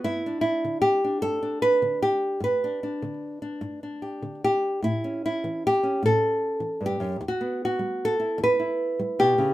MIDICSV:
0, 0, Header, 1, 2, 480
1, 0, Start_track
1, 0, Tempo, 798935
1, 26, Time_signature, 6, 3, 24, 8
1, 3386, Tempo, 788436
1, 5762, End_track
2, 0, Start_track
2, 0, Title_t, "Nylon-string guitar"
2, 0, Program_c, 0, 24
2, 0, Note_on_c, 0, 59, 55
2, 26, Note_on_c, 0, 64, 90
2, 31, Note_on_c, 0, 43, 72
2, 155, Note_off_c, 0, 59, 0
2, 158, Note_on_c, 0, 62, 47
2, 241, Note_off_c, 0, 64, 0
2, 248, Note_on_c, 0, 64, 79
2, 387, Note_on_c, 0, 50, 64
2, 453, Note_off_c, 0, 43, 0
2, 488, Note_off_c, 0, 64, 0
2, 490, Note_on_c, 0, 67, 93
2, 625, Note_off_c, 0, 62, 0
2, 627, Note_on_c, 0, 62, 45
2, 730, Note_off_c, 0, 67, 0
2, 733, Note_on_c, 0, 69, 95
2, 738, Note_on_c, 0, 43, 77
2, 810, Note_off_c, 0, 50, 0
2, 849, Note_off_c, 0, 62, 0
2, 856, Note_on_c, 0, 62, 49
2, 971, Note_off_c, 0, 69, 0
2, 974, Note_on_c, 0, 71, 106
2, 1094, Note_on_c, 0, 50, 62
2, 1166, Note_off_c, 0, 43, 0
2, 1212, Note_off_c, 0, 71, 0
2, 1216, Note_on_c, 0, 67, 88
2, 1424, Note_off_c, 0, 62, 0
2, 1444, Note_on_c, 0, 43, 81
2, 1453, Note_off_c, 0, 50, 0
2, 1454, Note_off_c, 0, 67, 0
2, 1465, Note_on_c, 0, 71, 89
2, 1586, Note_on_c, 0, 62, 46
2, 1694, Note_off_c, 0, 62, 0
2, 1701, Note_on_c, 0, 62, 47
2, 1817, Note_on_c, 0, 50, 61
2, 1882, Note_off_c, 0, 43, 0
2, 2047, Note_off_c, 0, 62, 0
2, 2055, Note_on_c, 0, 62, 45
2, 2169, Note_on_c, 0, 43, 73
2, 2250, Note_off_c, 0, 50, 0
2, 2294, Note_off_c, 0, 62, 0
2, 2301, Note_on_c, 0, 62, 37
2, 2414, Note_off_c, 0, 71, 0
2, 2416, Note_on_c, 0, 67, 42
2, 2538, Note_on_c, 0, 50, 53
2, 2609, Note_off_c, 0, 43, 0
2, 2660, Note_off_c, 0, 67, 0
2, 2670, Note_on_c, 0, 67, 82
2, 2877, Note_off_c, 0, 62, 0
2, 2899, Note_on_c, 0, 45, 72
2, 2904, Note_off_c, 0, 50, 0
2, 2905, Note_off_c, 0, 67, 0
2, 2908, Note_on_c, 0, 64, 77
2, 3029, Note_on_c, 0, 61, 45
2, 3149, Note_off_c, 0, 64, 0
2, 3158, Note_on_c, 0, 64, 77
2, 3268, Note_on_c, 0, 52, 63
2, 3337, Note_off_c, 0, 45, 0
2, 3393, Note_off_c, 0, 64, 0
2, 3405, Note_on_c, 0, 67, 98
2, 3499, Note_off_c, 0, 61, 0
2, 3506, Note_on_c, 0, 61, 43
2, 3624, Note_on_c, 0, 45, 80
2, 3638, Note_off_c, 0, 67, 0
2, 3642, Note_on_c, 0, 69, 90
2, 3701, Note_off_c, 0, 52, 0
2, 3974, Note_on_c, 0, 52, 60
2, 4059, Note_off_c, 0, 45, 0
2, 4098, Note_on_c, 0, 43, 63
2, 4116, Note_off_c, 0, 69, 0
2, 4130, Note_on_c, 0, 67, 84
2, 4214, Note_off_c, 0, 43, 0
2, 4217, Note_on_c, 0, 42, 70
2, 4320, Note_off_c, 0, 61, 0
2, 4340, Note_off_c, 0, 42, 0
2, 4342, Note_off_c, 0, 52, 0
2, 4342, Note_on_c, 0, 40, 76
2, 4360, Note_off_c, 0, 67, 0
2, 4389, Note_on_c, 0, 66, 80
2, 4464, Note_on_c, 0, 59, 50
2, 4604, Note_off_c, 0, 66, 0
2, 4612, Note_on_c, 0, 66, 83
2, 4699, Note_on_c, 0, 55, 69
2, 4778, Note_off_c, 0, 40, 0
2, 4855, Note_on_c, 0, 69, 89
2, 4942, Note_off_c, 0, 66, 0
2, 4945, Note_on_c, 0, 64, 49
2, 5057, Note_on_c, 0, 40, 80
2, 5084, Note_off_c, 0, 69, 0
2, 5090, Note_on_c, 0, 71, 101
2, 5138, Note_off_c, 0, 55, 0
2, 5180, Note_off_c, 0, 64, 0
2, 5187, Note_on_c, 0, 64, 40
2, 5431, Note_on_c, 0, 55, 68
2, 5495, Note_off_c, 0, 40, 0
2, 5550, Note_on_c, 0, 47, 64
2, 5551, Note_off_c, 0, 71, 0
2, 5554, Note_on_c, 0, 67, 96
2, 5664, Note_off_c, 0, 47, 0
2, 5667, Note_on_c, 0, 49, 71
2, 5756, Note_off_c, 0, 59, 0
2, 5757, Note_off_c, 0, 64, 0
2, 5762, Note_off_c, 0, 49, 0
2, 5762, Note_off_c, 0, 55, 0
2, 5762, Note_off_c, 0, 67, 0
2, 5762, End_track
0, 0, End_of_file